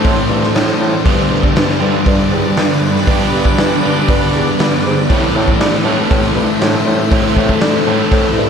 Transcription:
0.00 1.05 A2 medium
0.00 1.05 E3 medium
0.00 1.04 A3 medium
0.00 1.05 C4 medium
0.00 1.04 E4 medium
0.00 1.03 A4 medium
0.00 1.04 A4 medium
0.00 1.03 C5 medium
0.00 5.06 D5 medium
0.00 1.03 C6 medium
0.04 0.21 A2 medium
0.04 kick loud
0.04 open hi-hat medium
0.29 0.46 G2 medium
0.43 snare soft
0.55 0.71 A2 medium
0.55 snare loud
0.55 open hi-hat soft
0.80 0.96 A2 medium
1.05 1.84 G2 medium
1.05 1.22 G2 medium
1.05 1.80 D3 medium
1.05 1.82 G3 medium
1.05 1.82 B3 medium
1.05 1.80 D4 medium
1.05 5.06 G4 medium
1.05 1.80 G4 medium
1.05 5.06 B4 medium
1.05 5.06 B5 loud
1.05 kick loud
1.05 open hi-hat medium
1.31 1.47 G2 medium
1.43 kick medium
1.56 1.72 E3 medium
1.56 snare loud
1.56 open hi-hat medium
1.80 1.98 G2 medium
1.80 3.05 G2 medium
1.80 3.06 D3 medium
1.80 3.07 G3 medium
1.80 3.07 B3 medium
1.80 3.06 D4 medium
1.80 3.06 G4 medium
2.06 2.22 G2 loud
2.06 kick loud
2.06 open hi-hat medium
2.32 2.48 E2 medium
2.57 2.73 G2 medium
2.57 snare medium
2.57 open hi-hat soft
2.96 snare soft
3.06 3.82 G2 medium
3.06 3.23 G2 medium
3.06 3.82 D3 medium
3.06 3.82 G3 medium
3.06 3.83 B3 medium
3.06 3.83 D4 medium
3.06 kick loud
3.06 open hi-hat medium
3.11 3.82 G4 loud
3.33 3.49 G2 medium
3.45 kick medium
3.58 3.74 E3 medium
3.58 snare loud
3.58 open hi-hat medium
3.83 3.99 G2 medium
3.83 5.10 G2 medium
3.83 5.09 D3 medium
3.83 5.09 G3 medium
3.83 5.09 B3 medium
3.83 5.08 D4 medium
3.83 5.08 G4 medium
4.08 4.25 G2 loud
4.08 kick loud
4.08 open hi-hat medium
4.34 4.50 E2 medium
4.59 4.75 G2 medium
4.59 snare loud
4.59 open hi-hat medium
4.85 5.00 G#2 medium
5.10 5.88 A2 medium
5.10 5.26 A2 medium
5.10 5.87 E3 medium
5.10 5.85 A3 loud
5.10 5.86 C4 loud
5.10 5.85 E4 medium
5.10 8.50 A4 medium
5.10 5.84 A4 medium
5.10 8.50 C5 medium
5.10 8.50 E5 medium
5.10 7.10 C6 medium
5.10 kick loud
5.10 open hi-hat medium
5.36 5.51 A2 medium
5.48 kick medium
5.60 5.76 G3 medium
5.60 snare loud
5.60 open hi-hat medium
5.84 6.01 A2 medium
5.84 7.10 A2 medium
5.84 7.11 E3 medium
5.84 7.10 A3 medium
5.84 7.10 C4 medium
5.84 7.10 E4 medium
5.84 7.09 A4 medium
6.11 6.26 A2 loud
6.11 kick loud
6.11 open hi-hat medium
6.35 6.51 G2 medium
6.60 6.76 A2 medium
6.60 snare loud
6.60 open hi-hat soft
6.85 7.01 A2 medium
7.09 7.85 A2 medium
7.09 7.27 A2 medium
7.09 7.86 E3 medium
7.09 7.86 C4 loud
7.09 8.50 B5 medium
7.09 kick loud
7.09 open hi-hat medium
7.14 7.85 A3 medium
7.14 7.87 E4 loud
7.14 7.86 A4 loud
7.37 7.53 A2 medium
7.37 kick medium
7.49 kick medium
7.61 7.77 G3 medium
7.61 snare loud
7.61 open hi-hat medium
7.86 8.03 A2 medium
7.86 8.50 A3 medium
7.86 8.50 C4 medium
7.86 8.50 E4 medium
7.86 8.50 A4 medium
7.90 8.50 A2 medium
7.90 8.50 E3 medium
8.11 8.27 A2 medium
8.11 kick loud
8.11 open hi-hat medium
8.37 8.50 G2 medium

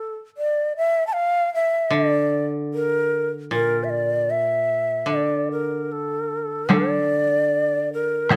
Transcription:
0.00 0.16 A4 medium
0.37 0.73 D5 medium
0.77 1.06 E5 medium
1.07 1.14 A5 soft
1.13 1.53 F5 medium
1.55 1.95 E5 medium
1.90 4.28 D3 soft
1.90 2.46 D5 medium
2.74 3.28 A#4 medium
3.51 5.07 A#2 soft
3.51 3.85 A#4 medium
3.84 3.91 E5 soft
3.90 4.32 D5 medium
4.30 5.11 E5 medium
5.06 6.67 D3 soft
5.06 5.49 D5 medium
5.52 5.93 A#4 soft
5.92 6.75 A4 medium
6.69 8.36 D3 soft
6.69 taiko rim soft
6.69 taiko high soft
6.73 7.93 D5 medium
7.93 8.34 A#4 medium
8.30 8.36 A2 soft
8.30 8.36 A4 medium
8.30 taiko rim medium
8.30 taiko high medium

